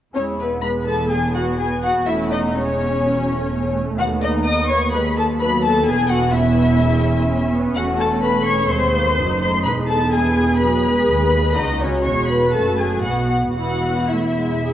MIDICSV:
0, 0, Header, 1, 6, 480
1, 0, Start_track
1, 0, Key_signature, 4, "major"
1, 0, Tempo, 476190
1, 155, Time_signature, 4, 2, 24, 8
1, 12154, Tempo, 493016
1, 13114, Tempo, 524476
1, 14659, End_track
2, 0, Start_track
2, 0, Title_t, "Violin section"
2, 0, Program_c, 0, 48
2, 159, Note_on_c, 0, 73, 63
2, 239, Note_off_c, 0, 73, 0
2, 402, Note_on_c, 0, 71, 46
2, 482, Note_off_c, 0, 71, 0
2, 635, Note_on_c, 0, 83, 62
2, 715, Note_off_c, 0, 83, 0
2, 875, Note_on_c, 0, 81, 56
2, 1116, Note_off_c, 0, 81, 0
2, 1120, Note_on_c, 0, 80, 56
2, 1356, Note_on_c, 0, 78, 56
2, 1358, Note_off_c, 0, 80, 0
2, 1437, Note_off_c, 0, 78, 0
2, 1603, Note_on_c, 0, 80, 61
2, 1840, Note_on_c, 0, 78, 59
2, 1843, Note_off_c, 0, 80, 0
2, 1920, Note_off_c, 0, 78, 0
2, 2091, Note_on_c, 0, 76, 58
2, 2171, Note_off_c, 0, 76, 0
2, 2339, Note_on_c, 0, 75, 60
2, 2420, Note_off_c, 0, 75, 0
2, 2579, Note_on_c, 0, 73, 64
2, 3756, Note_off_c, 0, 73, 0
2, 4022, Note_on_c, 0, 78, 62
2, 4102, Note_off_c, 0, 78, 0
2, 4259, Note_on_c, 0, 75, 66
2, 4340, Note_off_c, 0, 75, 0
2, 4490, Note_on_c, 0, 87, 66
2, 4727, Note_off_c, 0, 87, 0
2, 4730, Note_on_c, 0, 85, 70
2, 4966, Note_off_c, 0, 85, 0
2, 4967, Note_on_c, 0, 83, 62
2, 5202, Note_off_c, 0, 83, 0
2, 5212, Note_on_c, 0, 81, 63
2, 5293, Note_off_c, 0, 81, 0
2, 5454, Note_on_c, 0, 83, 71
2, 5682, Note_off_c, 0, 83, 0
2, 5695, Note_on_c, 0, 81, 69
2, 5920, Note_off_c, 0, 81, 0
2, 5922, Note_on_c, 0, 80, 74
2, 6152, Note_on_c, 0, 78, 70
2, 6153, Note_off_c, 0, 80, 0
2, 6393, Note_on_c, 0, 76, 71
2, 6394, Note_off_c, 0, 78, 0
2, 7553, Note_off_c, 0, 76, 0
2, 7817, Note_on_c, 0, 78, 70
2, 7898, Note_off_c, 0, 78, 0
2, 8063, Note_on_c, 0, 81, 76
2, 8144, Note_off_c, 0, 81, 0
2, 8302, Note_on_c, 0, 83, 81
2, 8525, Note_on_c, 0, 85, 75
2, 8533, Note_off_c, 0, 83, 0
2, 8769, Note_off_c, 0, 85, 0
2, 8772, Note_on_c, 0, 84, 78
2, 9474, Note_off_c, 0, 84, 0
2, 9486, Note_on_c, 0, 84, 75
2, 9726, Note_on_c, 0, 83, 68
2, 9728, Note_off_c, 0, 84, 0
2, 9806, Note_off_c, 0, 83, 0
2, 9967, Note_on_c, 0, 81, 71
2, 10210, Note_on_c, 0, 80, 76
2, 10212, Note_off_c, 0, 81, 0
2, 10689, Note_off_c, 0, 80, 0
2, 10690, Note_on_c, 0, 83, 71
2, 11645, Note_off_c, 0, 83, 0
2, 11653, Note_on_c, 0, 75, 71
2, 11905, Note_on_c, 0, 73, 60
2, 11906, Note_off_c, 0, 75, 0
2, 12148, Note_on_c, 0, 85, 68
2, 12153, Note_off_c, 0, 73, 0
2, 12367, Note_on_c, 0, 83, 62
2, 12389, Note_off_c, 0, 85, 0
2, 12613, Note_off_c, 0, 83, 0
2, 12625, Note_on_c, 0, 81, 60
2, 12864, Note_off_c, 0, 81, 0
2, 12868, Note_on_c, 0, 80, 60
2, 13109, Note_on_c, 0, 78, 56
2, 13117, Note_off_c, 0, 80, 0
2, 13338, Note_off_c, 0, 78, 0
2, 13349, Note_on_c, 0, 78, 52
2, 13423, Note_off_c, 0, 78, 0
2, 13584, Note_on_c, 0, 78, 60
2, 14062, Note_off_c, 0, 78, 0
2, 14077, Note_on_c, 0, 76, 48
2, 14659, Note_off_c, 0, 76, 0
2, 14659, End_track
3, 0, Start_track
3, 0, Title_t, "Violin section"
3, 0, Program_c, 1, 48
3, 151, Note_on_c, 1, 61, 52
3, 232, Note_off_c, 1, 61, 0
3, 407, Note_on_c, 1, 59, 39
3, 640, Note_off_c, 1, 59, 0
3, 647, Note_on_c, 1, 71, 49
3, 878, Note_on_c, 1, 69, 52
3, 881, Note_off_c, 1, 71, 0
3, 1117, Note_off_c, 1, 69, 0
3, 1123, Note_on_c, 1, 68, 50
3, 1363, Note_on_c, 1, 66, 50
3, 1365, Note_off_c, 1, 68, 0
3, 1599, Note_on_c, 1, 68, 47
3, 1601, Note_off_c, 1, 66, 0
3, 1680, Note_off_c, 1, 68, 0
3, 1853, Note_on_c, 1, 66, 49
3, 2089, Note_off_c, 1, 66, 0
3, 2097, Note_on_c, 1, 64, 50
3, 2334, Note_on_c, 1, 63, 52
3, 2336, Note_off_c, 1, 64, 0
3, 2575, Note_off_c, 1, 63, 0
3, 2584, Note_on_c, 1, 61, 54
3, 3783, Note_off_c, 1, 61, 0
3, 4021, Note_on_c, 1, 66, 59
3, 4102, Note_off_c, 1, 66, 0
3, 4266, Note_on_c, 1, 63, 53
3, 4496, Note_off_c, 1, 63, 0
3, 4496, Note_on_c, 1, 75, 60
3, 4735, Note_off_c, 1, 75, 0
3, 4737, Note_on_c, 1, 73, 61
3, 4818, Note_off_c, 1, 73, 0
3, 4978, Note_on_c, 1, 71, 59
3, 5059, Note_off_c, 1, 71, 0
3, 5218, Note_on_c, 1, 69, 56
3, 5299, Note_off_c, 1, 69, 0
3, 5451, Note_on_c, 1, 71, 56
3, 5532, Note_off_c, 1, 71, 0
3, 5692, Note_on_c, 1, 69, 55
3, 5919, Note_off_c, 1, 69, 0
3, 5929, Note_on_c, 1, 68, 63
3, 6161, Note_off_c, 1, 68, 0
3, 6162, Note_on_c, 1, 66, 58
3, 6395, Note_off_c, 1, 66, 0
3, 6397, Note_on_c, 1, 64, 61
3, 7579, Note_off_c, 1, 64, 0
3, 7831, Note_on_c, 1, 66, 61
3, 8048, Note_off_c, 1, 66, 0
3, 8064, Note_on_c, 1, 69, 65
3, 8300, Note_off_c, 1, 69, 0
3, 8300, Note_on_c, 1, 71, 64
3, 8537, Note_off_c, 1, 71, 0
3, 8537, Note_on_c, 1, 73, 65
3, 8770, Note_off_c, 1, 73, 0
3, 8777, Note_on_c, 1, 72, 73
3, 9491, Note_off_c, 1, 72, 0
3, 9503, Note_on_c, 1, 72, 60
3, 9584, Note_off_c, 1, 72, 0
3, 9731, Note_on_c, 1, 71, 66
3, 9812, Note_off_c, 1, 71, 0
3, 9975, Note_on_c, 1, 69, 62
3, 10208, Note_on_c, 1, 68, 60
3, 10216, Note_off_c, 1, 69, 0
3, 10698, Note_off_c, 1, 68, 0
3, 10698, Note_on_c, 1, 71, 66
3, 11649, Note_off_c, 1, 71, 0
3, 11668, Note_on_c, 1, 63, 60
3, 11913, Note_off_c, 1, 63, 0
3, 11926, Note_on_c, 1, 61, 48
3, 12154, Note_on_c, 1, 73, 57
3, 12163, Note_off_c, 1, 61, 0
3, 12392, Note_off_c, 1, 73, 0
3, 12407, Note_on_c, 1, 71, 54
3, 12625, Note_on_c, 1, 69, 50
3, 12633, Note_off_c, 1, 71, 0
3, 12862, Note_on_c, 1, 68, 52
3, 12869, Note_off_c, 1, 69, 0
3, 13107, Note_on_c, 1, 66, 47
3, 13113, Note_off_c, 1, 68, 0
3, 13325, Note_off_c, 1, 66, 0
3, 13336, Note_on_c, 1, 66, 41
3, 13409, Note_off_c, 1, 66, 0
3, 13585, Note_on_c, 1, 66, 57
3, 14063, Note_off_c, 1, 66, 0
3, 14071, Note_on_c, 1, 64, 44
3, 14659, Note_off_c, 1, 64, 0
3, 14659, End_track
4, 0, Start_track
4, 0, Title_t, "Viola section"
4, 0, Program_c, 2, 48
4, 154, Note_on_c, 2, 64, 38
4, 156, Note_on_c, 2, 56, 37
4, 605, Note_off_c, 2, 64, 0
4, 606, Note_off_c, 2, 56, 0
4, 646, Note_on_c, 2, 56, 39
4, 651, Note_on_c, 2, 59, 38
4, 1117, Note_off_c, 2, 56, 0
4, 1121, Note_off_c, 2, 59, 0
4, 1133, Note_on_c, 2, 59, 42
4, 1606, Note_off_c, 2, 59, 0
4, 1619, Note_on_c, 2, 59, 41
4, 2089, Note_off_c, 2, 59, 0
4, 2099, Note_on_c, 2, 57, 41
4, 2100, Note_on_c, 2, 61, 38
4, 2568, Note_off_c, 2, 61, 0
4, 2577, Note_off_c, 2, 57, 0
4, 2582, Note_on_c, 2, 56, 42
4, 2585, Note_on_c, 2, 61, 45
4, 3051, Note_off_c, 2, 56, 0
4, 3073, Note_on_c, 2, 54, 45
4, 3306, Note_off_c, 2, 54, 0
4, 3308, Note_on_c, 2, 57, 45
4, 3994, Note_off_c, 2, 61, 0
4, 4027, Note_on_c, 2, 59, 44
4, 4495, Note_off_c, 2, 59, 0
4, 4501, Note_off_c, 2, 57, 0
4, 4507, Note_on_c, 2, 59, 49
4, 4978, Note_on_c, 2, 56, 50
4, 4979, Note_off_c, 2, 59, 0
4, 5440, Note_on_c, 2, 59, 46
4, 5442, Note_on_c, 2, 54, 49
4, 5448, Note_off_c, 2, 56, 0
4, 5907, Note_off_c, 2, 59, 0
4, 5917, Note_off_c, 2, 54, 0
4, 5920, Note_on_c, 2, 52, 49
4, 5922, Note_on_c, 2, 59, 47
4, 6387, Note_off_c, 2, 52, 0
4, 6388, Note_off_c, 2, 59, 0
4, 6406, Note_on_c, 2, 59, 47
4, 6406, Note_on_c, 2, 61, 51
4, 6873, Note_on_c, 2, 56, 47
4, 6877, Note_off_c, 2, 59, 0
4, 7335, Note_off_c, 2, 56, 0
4, 7347, Note_on_c, 2, 56, 49
4, 7427, Note_off_c, 2, 56, 0
4, 7587, Note_on_c, 2, 59, 51
4, 7817, Note_off_c, 2, 59, 0
4, 7825, Note_on_c, 2, 57, 51
4, 8777, Note_off_c, 2, 57, 0
4, 8778, Note_off_c, 2, 61, 0
4, 8779, Note_on_c, 2, 60, 53
4, 8780, Note_on_c, 2, 56, 52
4, 9016, Note_off_c, 2, 60, 0
4, 9023, Note_on_c, 2, 59, 51
4, 9257, Note_off_c, 2, 56, 0
4, 9259, Note_off_c, 2, 59, 0
4, 9262, Note_on_c, 2, 54, 54
4, 9263, Note_on_c, 2, 63, 47
4, 9500, Note_off_c, 2, 54, 0
4, 9510, Note_on_c, 2, 57, 49
4, 9741, Note_off_c, 2, 57, 0
4, 9752, Note_on_c, 2, 56, 46
4, 10229, Note_off_c, 2, 63, 0
4, 10232, Note_off_c, 2, 56, 0
4, 10233, Note_on_c, 2, 64, 50
4, 10236, Note_on_c, 2, 59, 49
4, 10466, Note_off_c, 2, 64, 0
4, 10468, Note_on_c, 2, 68, 54
4, 10712, Note_off_c, 2, 59, 0
4, 10713, Note_on_c, 2, 54, 51
4, 10950, Note_off_c, 2, 54, 0
4, 10954, Note_on_c, 2, 56, 45
4, 11663, Note_off_c, 2, 56, 0
4, 11674, Note_off_c, 2, 68, 0
4, 11675, Note_on_c, 2, 56, 44
4, 11676, Note_on_c, 2, 66, 46
4, 12147, Note_off_c, 2, 56, 0
4, 12159, Note_on_c, 2, 56, 44
4, 12622, Note_off_c, 2, 56, 0
4, 12631, Note_on_c, 2, 57, 43
4, 13109, Note_off_c, 2, 57, 0
4, 13122, Note_on_c, 2, 59, 38
4, 13558, Note_off_c, 2, 66, 0
4, 13592, Note_off_c, 2, 59, 0
4, 13600, Note_on_c, 2, 64, 40
4, 13603, Note_on_c, 2, 59, 34
4, 14023, Note_off_c, 2, 64, 0
4, 14024, Note_off_c, 2, 59, 0
4, 14084, Note_on_c, 2, 57, 44
4, 14157, Note_off_c, 2, 57, 0
4, 14323, Note_on_c, 2, 56, 40
4, 14556, Note_off_c, 2, 56, 0
4, 14568, Note_on_c, 2, 68, 49
4, 14659, Note_off_c, 2, 68, 0
4, 14659, End_track
5, 0, Start_track
5, 0, Title_t, "Cello section"
5, 0, Program_c, 3, 48
5, 159, Note_on_c, 3, 40, 46
5, 2055, Note_off_c, 3, 40, 0
5, 2092, Note_on_c, 3, 40, 46
5, 3978, Note_off_c, 3, 40, 0
5, 4025, Note_on_c, 3, 39, 51
5, 5885, Note_off_c, 3, 39, 0
5, 5912, Note_on_c, 3, 40, 57
5, 7807, Note_off_c, 3, 40, 0
5, 7819, Note_on_c, 3, 40, 54
5, 8755, Note_off_c, 3, 40, 0
5, 8775, Note_on_c, 3, 39, 57
5, 9245, Note_off_c, 3, 39, 0
5, 9252, Note_on_c, 3, 42, 51
5, 9737, Note_off_c, 3, 42, 0
5, 9737, Note_on_c, 3, 40, 56
5, 11187, Note_off_c, 3, 40, 0
5, 11192, Note_on_c, 3, 39, 51
5, 11665, Note_off_c, 3, 39, 0
5, 11670, Note_on_c, 3, 37, 50
5, 12157, Note_off_c, 3, 37, 0
5, 12159, Note_on_c, 3, 40, 46
5, 12625, Note_on_c, 3, 42, 45
5, 12631, Note_off_c, 3, 40, 0
5, 13115, Note_off_c, 3, 42, 0
5, 13117, Note_on_c, 3, 47, 47
5, 13592, Note_on_c, 3, 40, 46
5, 13593, Note_off_c, 3, 47, 0
5, 14659, Note_off_c, 3, 40, 0
5, 14659, End_track
6, 0, Start_track
6, 0, Title_t, "Double bass section"
6, 0, Program_c, 4, 48
6, 150, Note_on_c, 4, 28, 46
6, 2050, Note_off_c, 4, 28, 0
6, 2096, Note_on_c, 4, 28, 51
6, 3980, Note_off_c, 4, 28, 0
6, 4024, Note_on_c, 4, 39, 54
6, 5884, Note_off_c, 4, 39, 0
6, 5917, Note_on_c, 4, 28, 63
6, 7812, Note_off_c, 4, 28, 0
6, 7824, Note_on_c, 4, 28, 58
6, 8758, Note_off_c, 4, 28, 0
6, 8771, Note_on_c, 4, 39, 53
6, 9243, Note_off_c, 4, 39, 0
6, 9253, Note_on_c, 4, 30, 54
6, 9734, Note_on_c, 4, 28, 59
6, 9738, Note_off_c, 4, 30, 0
6, 11186, Note_off_c, 4, 28, 0
6, 11189, Note_on_c, 4, 39, 50
6, 11664, Note_off_c, 4, 39, 0
6, 11670, Note_on_c, 4, 37, 51
6, 12155, Note_on_c, 4, 28, 46
6, 12157, Note_off_c, 4, 37, 0
6, 12630, Note_off_c, 4, 28, 0
6, 12632, Note_on_c, 4, 30, 49
6, 13117, Note_on_c, 4, 35, 44
6, 13119, Note_off_c, 4, 30, 0
6, 13593, Note_off_c, 4, 35, 0
6, 13601, Note_on_c, 4, 28, 49
6, 14659, Note_off_c, 4, 28, 0
6, 14659, End_track
0, 0, End_of_file